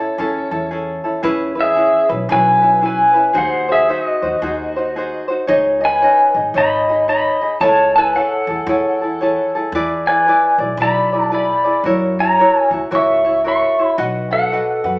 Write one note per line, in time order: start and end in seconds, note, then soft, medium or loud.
0.00 0.18 C#4 soft
0.00 0.18 E4 soft
0.00 0.18 A4 medium
0.00 0.69 C#5 medium
0.18 0.40 E2 medium
0.18 0.52 C#4 medium
0.18 0.51 E4 medium
0.18 0.51 G#4 medium
0.18 0.50 A4 medium
0.51 0.99 E2 medium
0.51 0.70 C#4 soft
0.51 0.72 E4 soft
0.51 0.71 A4 soft
0.71 1.04 C#4 medium
0.71 1.03 E4 medium
0.71 1.04 G#4 medium
0.71 1.03 A4 medium
1.04 1.22 C#4 soft
1.04 1.22 E4 medium
1.04 1.24 A4 soft
1.23 1.79 E2 medium
1.23 1.57 C#4 medium
1.23 1.56 E4 medium
1.23 1.57 G#4 medium
1.23 1.54 B4 medium
1.55 1.75 C#4 soft
1.55 1.76 E4 soft
1.55 1.76 B4 soft
1.61 2.09 G#4 medium
1.61 2.08 E5 loud
1.76 2.10 C#4 medium
1.76 2.09 E4 medium
1.76 2.10 G#4 medium
1.76 2.08 B4 medium
2.09 2.22 B1 medium
2.09 2.28 C#4 soft
2.09 2.29 E4 soft
2.09 2.29 B4 medium
2.29 2.98 B1 medium
2.29 2.62 C#4 medium
2.29 2.62 E4 medium
2.29 2.63 G#4 medium
2.29 2.60 B4 medium
2.29 2.84 G#5 loud
2.33 2.81 B4 medium
2.62 2.81 C#4 soft
2.62 2.81 E4 soft
2.62 2.82 B4 soft
2.81 3.15 C#4 medium
2.81 3.14 E4 medium
2.81 3.15 G#4 medium
2.81 3.12 B4 medium
2.86 3.34 B4 medium
2.86 3.37 G#5 medium
3.14 3.34 C#4 soft
3.14 3.34 E4 soft
3.14 3.34 B4 soft
3.33 3.91 D#2 medium
3.33 3.68 D#4 medium
3.33 3.68 F#4 medium
3.33 3.68 G#4 medium
3.33 3.67 C5 medium
3.38 3.68 C5 medium
3.38 3.71 F#5 medium
3.69 3.88 D#4 soft
3.69 3.88 F#4 soft
3.69 3.89 G#4 medium
3.69 3.88 C5 soft
3.69 3.91 E5 medium
3.88 4.22 D#4 medium
3.88 4.22 F#4 medium
3.88 5.25 F#4 medium
3.88 4.22 G#4 medium
3.88 4.21 C5 medium
3.88 4.02 E5 medium
4.02 5.25 D#5 medium
4.22 4.35 D#2 medium
4.22 4.42 D#4 soft
4.22 4.42 F#4 soft
4.22 4.42 C5 soft
4.42 5.11 D#2 medium
4.42 4.76 D#4 medium
4.42 4.76 F#4 medium
4.42 4.75 G#4 medium
4.42 4.75 C5 medium
4.76 4.95 D#4 soft
4.76 4.96 F#4 soft
4.76 4.95 C5 medium
4.96 5.29 D#4 medium
4.96 5.28 F#4 medium
4.96 5.29 G#4 medium
4.96 5.27 C5 medium
5.28 5.47 D#4 soft
5.28 5.48 F#4 soft
5.28 5.48 C5 medium
5.47 6.04 C#2 loud
5.47 5.81 D#4 medium
5.47 5.80 G#4 medium
5.47 5.81 C#5 medium
5.47 5.79 D#5 medium
5.81 6.01 D#4 soft
5.81 6.01 G#4 soft
5.81 6.01 D#5 soft
5.85 6.33 B4 medium
5.85 6.32 G#5 loud
6.02 6.35 D#4 medium
6.02 6.35 G#4 medium
6.02 6.34 C#5 medium
6.02 6.34 D#5 medium
6.34 6.47 G#1 medium
6.34 6.54 D#4 soft
6.34 6.55 G#4 soft
6.34 6.54 D#5 soft
6.54 7.23 G#1 medium
6.54 6.88 D#4 medium
6.54 6.88 G#4 medium
6.54 6.88 C#5 medium
6.54 6.87 D#5 medium
6.54 7.08 B5 loud
6.58 7.06 D#5 medium
6.88 7.07 D#4 soft
6.88 7.08 G#4 soft
6.88 7.08 D#5 soft
7.08 7.41 D#4 medium
7.08 7.41 G#4 medium
7.08 7.41 C#5 medium
7.08 7.40 D#5 medium
7.08 7.58 D#5 medium
7.08 7.63 B5 medium
7.41 7.61 D#4 soft
7.41 7.61 G#4 soft
7.41 7.61 D#5 medium
7.61 8.17 C#2 medium
7.61 7.94 E4 medium
7.61 7.94 G#4 medium
7.61 7.94 A4 medium
7.61 7.94 C#5 medium
7.61 7.93 C#5 medium
7.61 7.91 A5 medium
7.95 8.15 E4 soft
7.95 8.15 G#4 soft
7.95 8.14 A4 medium
7.95 8.14 B4 medium
7.95 8.15 G#5 medium
8.15 8.48 E4 medium
8.15 8.48 G#4 medium
8.15 8.47 A4 medium
8.15 9.51 A4 medium
8.15 8.47 C#5 medium
8.15 9.50 F#5 medium
8.47 8.60 E2 medium
8.47 8.67 E4 soft
8.47 8.68 G#4 soft
8.47 8.67 A4 soft
8.66 9.35 E2 loud
8.66 9.01 E4 medium
8.66 9.01 G#4 medium
8.66 9.00 A4 medium
8.66 9.01 C#5 medium
9.01 9.21 E4 soft
9.01 9.21 G#4 soft
9.01 9.20 A4 soft
9.21 9.54 E4 medium
9.21 9.54 G#4 medium
9.21 9.54 A4 medium
9.21 9.53 C#5 medium
9.55 9.74 E4 soft
9.55 9.74 G#4 soft
9.55 9.74 A4 medium
9.72 10.29 E2 medium
9.72 10.07 E4 medium
9.72 10.07 G#4 loud
9.72 10.07 B4 medium
9.72 10.07 D5 loud
10.07 10.27 E4 soft
10.07 10.27 G#4 soft
10.07 10.57 B4 medium
10.07 10.27 D5 medium
10.07 10.56 G#5 medium
10.27 10.60 E4 medium
10.27 10.60 G#4 medium
10.27 10.59 B4 medium
10.27 10.58 D5 medium
10.58 10.71 B1 medium
10.58 10.79 E4 soft
10.58 10.79 G#4 soft
10.58 10.79 D5 soft
10.77 11.47 B1 medium
10.77 11.13 E4 medium
10.77 11.12 G#4 medium
10.77 11.13 B4 medium
10.77 11.11 D5 medium
10.82 11.31 D5 medium
10.82 11.33 B5 loud
11.12 11.31 E4 soft
11.12 11.31 G#4 soft
11.12 11.32 D5 soft
11.31 11.65 E4 medium
11.31 11.64 G#4 medium
11.31 11.65 B4 medium
11.31 11.63 D5 medium
11.31 11.83 D5 medium
11.31 11.83 B5 medium
11.64 11.85 E4 soft
11.64 11.85 G#4 soft
11.64 11.85 D5 soft
11.84 12.40 F#2 medium
11.84 12.18 E4 medium
11.84 12.19 F#4 medium
11.84 12.18 A#4 medium
11.84 12.18 C#5 medium
12.19 12.39 E4 soft
12.19 12.39 F#4 soft
12.19 12.38 C#5 soft
12.19 12.70 C#5 medium
12.19 12.69 A#5 medium
12.39 12.72 E4 medium
12.39 12.73 F#4 medium
12.39 12.72 A#4 medium
12.39 12.71 C#5 medium
12.71 12.84 C#2 medium
12.71 12.91 E4 soft
12.71 12.90 F#4 soft
12.71 12.90 C#5 soft
12.91 13.61 C#2 medium
12.91 13.24 E4 medium
12.91 13.25 F#4 medium
12.91 13.24 A#4 medium
12.91 13.23 C#5 medium
12.95 13.44 E5 medium
12.95 13.47 C#6 loud
13.24 13.44 E4 soft
13.24 13.44 F#4 soft
13.24 13.44 C#5 medium
13.44 13.78 E4 medium
13.44 13.78 F#4 medium
13.44 13.78 A#4 medium
13.44 13.77 C#5 medium
13.44 13.96 C#6 medium
13.49 13.97 E5 medium
13.78 13.99 E4 soft
13.78 13.97 F#4 soft
13.78 13.97 C#5 soft
13.98 14.55 B1 medium
13.98 14.32 F#4 medium
13.98 14.31 B4 medium
13.98 14.32 D#5 medium
13.98 14.29 F#5 medium
14.31 14.51 F#4 soft
14.31 14.99 A4 medium
14.31 14.52 B4 soft
14.31 14.51 F#5 medium
14.31 14.99 F#5 loud
14.52 14.85 F#4 medium
14.52 14.84 B4 medium
14.52 14.85 D#5 medium
14.52 14.84 F#5 medium
14.84 14.97 F#2 medium
14.84 14.99 F#4 soft
14.84 14.99 B4 soft
14.84 14.99 F#5 soft